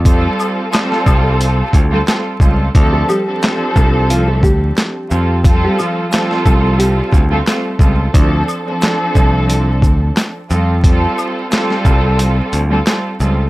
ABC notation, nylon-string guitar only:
X:1
M:4/4
L:1/16
Q:"Swing 16ths" 1/4=89
K:F
V:1 name="Nylon-string guitar"
z16 | z [A,A] [G,G]6 [F,F] [A,A] [G,G]6 | z [G,G] [F,F]6 [G,G]3 [A,A]4- [A,A] | z16 |
z16 |]